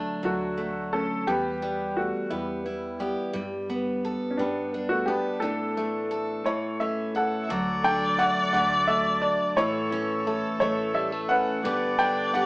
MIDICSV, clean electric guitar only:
0, 0, Header, 1, 2, 480
1, 0, Start_track
1, 0, Key_signature, 2, "major"
1, 0, Tempo, 692042
1, 884, Time_signature, 6, 3, 24, 8
1, 8641, End_track
2, 0, Start_track
2, 0, Title_t, "Clean electric guitar"
2, 0, Program_c, 0, 27
2, 0, Note_on_c, 0, 38, 59
2, 0, Note_on_c, 0, 57, 44
2, 642, Note_off_c, 0, 38, 0
2, 650, Note_on_c, 0, 38, 57
2, 884, Note_off_c, 0, 38, 0
2, 886, Note_off_c, 0, 57, 0
2, 887, Note_on_c, 0, 40, 64
2, 1131, Note_on_c, 0, 55, 47
2, 2073, Note_off_c, 0, 55, 0
2, 2081, Note_on_c, 0, 55, 55
2, 2089, Note_on_c, 0, 59, 54
2, 2296, Note_off_c, 0, 40, 0
2, 2297, Note_off_c, 0, 59, 0
2, 2323, Note_on_c, 0, 43, 60
2, 2562, Note_off_c, 0, 55, 0
2, 2572, Note_on_c, 0, 59, 46
2, 3513, Note_off_c, 0, 59, 0
2, 3521, Note_on_c, 0, 59, 53
2, 3524, Note_on_c, 0, 62, 51
2, 3734, Note_off_c, 0, 59, 0
2, 3735, Note_off_c, 0, 43, 0
2, 3736, Note_off_c, 0, 62, 0
2, 3753, Note_on_c, 0, 45, 66
2, 4003, Note_on_c, 0, 57, 45
2, 4455, Note_off_c, 0, 57, 0
2, 4462, Note_off_c, 0, 45, 0
2, 4470, Note_on_c, 0, 45, 59
2, 4726, Note_on_c, 0, 57, 47
2, 5177, Note_off_c, 0, 57, 0
2, 5196, Note_on_c, 0, 38, 66
2, 5198, Note_off_c, 0, 45, 0
2, 5436, Note_on_c, 0, 50, 59
2, 5686, Note_on_c, 0, 57, 59
2, 5912, Note_off_c, 0, 50, 0
2, 5920, Note_on_c, 0, 50, 65
2, 6158, Note_off_c, 0, 57, 0
2, 6167, Note_on_c, 0, 57, 54
2, 6399, Note_on_c, 0, 62, 61
2, 6614, Note_off_c, 0, 62, 0
2, 6617, Note_off_c, 0, 57, 0
2, 6634, Note_on_c, 0, 45, 73
2, 6641, Note_off_c, 0, 38, 0
2, 6643, Note_off_c, 0, 50, 0
2, 6871, Note_on_c, 0, 52, 55
2, 7123, Note_on_c, 0, 57, 56
2, 7345, Note_off_c, 0, 52, 0
2, 7354, Note_on_c, 0, 52, 62
2, 7588, Note_off_c, 0, 57, 0
2, 7591, Note_on_c, 0, 55, 59
2, 7715, Note_off_c, 0, 55, 0
2, 7715, Note_on_c, 0, 57, 51
2, 7840, Note_on_c, 0, 61, 57
2, 8049, Note_off_c, 0, 52, 0
2, 8052, Note_off_c, 0, 61, 0
2, 8072, Note_on_c, 0, 43, 77
2, 8077, Note_off_c, 0, 45, 0
2, 8078, Note_off_c, 0, 57, 0
2, 8078, Note_on_c, 0, 50, 61
2, 8083, Note_on_c, 0, 59, 59
2, 8088, Note_on_c, 0, 62, 61
2, 8092, Note_on_c, 0, 67, 69
2, 8303, Note_off_c, 0, 50, 0
2, 8311, Note_on_c, 0, 50, 60
2, 8549, Note_off_c, 0, 59, 0
2, 8557, Note_on_c, 0, 59, 56
2, 8641, Note_off_c, 0, 43, 0
2, 8641, Note_off_c, 0, 50, 0
2, 8641, Note_off_c, 0, 59, 0
2, 8641, Note_off_c, 0, 62, 0
2, 8641, Note_off_c, 0, 67, 0
2, 8641, End_track
0, 0, End_of_file